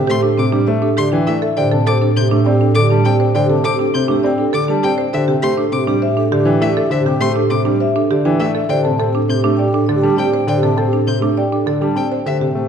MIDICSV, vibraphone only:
0, 0, Header, 1, 2, 480
1, 0, Start_track
1, 0, Tempo, 594059
1, 1265, Time_signature, 3, 2, 24, 8
1, 10248, End_track
2, 0, Start_track
2, 0, Title_t, "Vibraphone"
2, 0, Program_c, 0, 11
2, 0, Note_on_c, 0, 79, 76
2, 55, Note_on_c, 0, 72, 81
2, 100, Note_off_c, 0, 79, 0
2, 170, Note_on_c, 0, 69, 85
2, 217, Note_off_c, 0, 72, 0
2, 304, Note_on_c, 0, 72, 69
2, 336, Note_off_c, 0, 69, 0
2, 424, Note_on_c, 0, 67, 68
2, 460, Note_off_c, 0, 72, 0
2, 539, Note_on_c, 0, 76, 95
2, 581, Note_off_c, 0, 67, 0
2, 667, Note_on_c, 0, 69, 71
2, 699, Note_off_c, 0, 76, 0
2, 788, Note_on_c, 0, 74, 79
2, 822, Note_off_c, 0, 69, 0
2, 907, Note_on_c, 0, 79, 81
2, 942, Note_off_c, 0, 74, 0
2, 1027, Note_on_c, 0, 74, 68
2, 1062, Note_off_c, 0, 79, 0
2, 1147, Note_on_c, 0, 76, 72
2, 1182, Note_off_c, 0, 74, 0
2, 1275, Note_on_c, 0, 72, 86
2, 1302, Note_off_c, 0, 76, 0
2, 1392, Note_on_c, 0, 81, 71
2, 1424, Note_off_c, 0, 72, 0
2, 1514, Note_on_c, 0, 72, 82
2, 1544, Note_off_c, 0, 81, 0
2, 1630, Note_on_c, 0, 69, 84
2, 1664, Note_off_c, 0, 72, 0
2, 1743, Note_on_c, 0, 72, 69
2, 1783, Note_off_c, 0, 69, 0
2, 1862, Note_on_c, 0, 67, 66
2, 1900, Note_off_c, 0, 72, 0
2, 1977, Note_on_c, 0, 79, 83
2, 2020, Note_off_c, 0, 67, 0
2, 2101, Note_on_c, 0, 69, 73
2, 2138, Note_off_c, 0, 79, 0
2, 2230, Note_on_c, 0, 74, 76
2, 2260, Note_off_c, 0, 69, 0
2, 2355, Note_on_c, 0, 81, 82
2, 2383, Note_off_c, 0, 74, 0
2, 2466, Note_on_c, 0, 74, 69
2, 2504, Note_off_c, 0, 81, 0
2, 2586, Note_on_c, 0, 79, 62
2, 2621, Note_off_c, 0, 74, 0
2, 2714, Note_on_c, 0, 72, 98
2, 2741, Note_off_c, 0, 79, 0
2, 2832, Note_on_c, 0, 81, 71
2, 2864, Note_off_c, 0, 72, 0
2, 2961, Note_on_c, 0, 72, 77
2, 2984, Note_off_c, 0, 81, 0
2, 3080, Note_on_c, 0, 69, 89
2, 3107, Note_off_c, 0, 72, 0
2, 3199, Note_on_c, 0, 72, 70
2, 3226, Note_off_c, 0, 69, 0
2, 3323, Note_on_c, 0, 67, 80
2, 3346, Note_off_c, 0, 72, 0
2, 3441, Note_on_c, 0, 79, 92
2, 3467, Note_off_c, 0, 67, 0
2, 3553, Note_on_c, 0, 69, 75
2, 3587, Note_off_c, 0, 79, 0
2, 3670, Note_on_c, 0, 74, 71
2, 3704, Note_off_c, 0, 69, 0
2, 3798, Note_on_c, 0, 81, 87
2, 3823, Note_off_c, 0, 74, 0
2, 3924, Note_on_c, 0, 74, 77
2, 3945, Note_off_c, 0, 81, 0
2, 4033, Note_on_c, 0, 79, 66
2, 4067, Note_off_c, 0, 74, 0
2, 4158, Note_on_c, 0, 72, 90
2, 4184, Note_off_c, 0, 79, 0
2, 4275, Note_on_c, 0, 79, 75
2, 4306, Note_off_c, 0, 72, 0
2, 4396, Note_on_c, 0, 72, 80
2, 4424, Note_off_c, 0, 79, 0
2, 4513, Note_on_c, 0, 69, 81
2, 4545, Note_off_c, 0, 72, 0
2, 4627, Note_on_c, 0, 72, 71
2, 4664, Note_off_c, 0, 69, 0
2, 4753, Note_on_c, 0, 67, 84
2, 4782, Note_off_c, 0, 72, 0
2, 4865, Note_on_c, 0, 76, 93
2, 4904, Note_off_c, 0, 67, 0
2, 4986, Note_on_c, 0, 69, 84
2, 5021, Note_off_c, 0, 76, 0
2, 5109, Note_on_c, 0, 74, 75
2, 5142, Note_off_c, 0, 69, 0
2, 5222, Note_on_c, 0, 79, 77
2, 5262, Note_off_c, 0, 74, 0
2, 5348, Note_on_c, 0, 74, 76
2, 5380, Note_off_c, 0, 79, 0
2, 5467, Note_on_c, 0, 76, 67
2, 5502, Note_off_c, 0, 74, 0
2, 5595, Note_on_c, 0, 72, 94
2, 5622, Note_off_c, 0, 76, 0
2, 5718, Note_on_c, 0, 79, 72
2, 5744, Note_off_c, 0, 72, 0
2, 5835, Note_on_c, 0, 72, 77
2, 5866, Note_off_c, 0, 79, 0
2, 5951, Note_on_c, 0, 69, 82
2, 5984, Note_off_c, 0, 72, 0
2, 6068, Note_on_c, 0, 72, 75
2, 6103, Note_off_c, 0, 69, 0
2, 6195, Note_on_c, 0, 67, 79
2, 6222, Note_off_c, 0, 72, 0
2, 6310, Note_on_c, 0, 76, 100
2, 6345, Note_off_c, 0, 67, 0
2, 6430, Note_on_c, 0, 69, 78
2, 6463, Note_off_c, 0, 76, 0
2, 6558, Note_on_c, 0, 74, 75
2, 6583, Note_off_c, 0, 69, 0
2, 6667, Note_on_c, 0, 79, 83
2, 6705, Note_off_c, 0, 74, 0
2, 6796, Note_on_c, 0, 74, 69
2, 6822, Note_off_c, 0, 79, 0
2, 6913, Note_on_c, 0, 76, 70
2, 6945, Note_off_c, 0, 74, 0
2, 7025, Note_on_c, 0, 72, 95
2, 7064, Note_off_c, 0, 76, 0
2, 7137, Note_on_c, 0, 81, 75
2, 7181, Note_off_c, 0, 72, 0
2, 7258, Note_on_c, 0, 72, 81
2, 7298, Note_off_c, 0, 81, 0
2, 7375, Note_on_c, 0, 69, 88
2, 7418, Note_off_c, 0, 72, 0
2, 7502, Note_on_c, 0, 72, 72
2, 7538, Note_off_c, 0, 69, 0
2, 7615, Note_on_c, 0, 67, 79
2, 7660, Note_off_c, 0, 72, 0
2, 7732, Note_on_c, 0, 79, 87
2, 7778, Note_off_c, 0, 67, 0
2, 7860, Note_on_c, 0, 69, 82
2, 7896, Note_off_c, 0, 79, 0
2, 7971, Note_on_c, 0, 74, 70
2, 8019, Note_off_c, 0, 69, 0
2, 8092, Note_on_c, 0, 81, 81
2, 8136, Note_off_c, 0, 74, 0
2, 8213, Note_on_c, 0, 74, 79
2, 8256, Note_off_c, 0, 81, 0
2, 8349, Note_on_c, 0, 79, 70
2, 8377, Note_off_c, 0, 74, 0
2, 8467, Note_on_c, 0, 72, 95
2, 8502, Note_off_c, 0, 79, 0
2, 8590, Note_on_c, 0, 81, 75
2, 8622, Note_off_c, 0, 72, 0
2, 8710, Note_on_c, 0, 72, 80
2, 8743, Note_off_c, 0, 81, 0
2, 8824, Note_on_c, 0, 69, 79
2, 8863, Note_off_c, 0, 72, 0
2, 8941, Note_on_c, 0, 72, 69
2, 8981, Note_off_c, 0, 69, 0
2, 9071, Note_on_c, 0, 67, 70
2, 9100, Note_off_c, 0, 72, 0
2, 9190, Note_on_c, 0, 79, 91
2, 9223, Note_off_c, 0, 67, 0
2, 9313, Note_on_c, 0, 69, 68
2, 9343, Note_off_c, 0, 79, 0
2, 9437, Note_on_c, 0, 74, 69
2, 9464, Note_off_c, 0, 69, 0
2, 9560, Note_on_c, 0, 81, 74
2, 9585, Note_off_c, 0, 74, 0
2, 9673, Note_on_c, 0, 74, 63
2, 9706, Note_off_c, 0, 81, 0
2, 9797, Note_on_c, 0, 79, 60
2, 9824, Note_off_c, 0, 74, 0
2, 9911, Note_on_c, 0, 72, 87
2, 9945, Note_off_c, 0, 79, 0
2, 10037, Note_on_c, 0, 79, 60
2, 10063, Note_off_c, 0, 72, 0
2, 10157, Note_on_c, 0, 72, 70
2, 10185, Note_off_c, 0, 79, 0
2, 10248, Note_off_c, 0, 72, 0
2, 10248, End_track
0, 0, End_of_file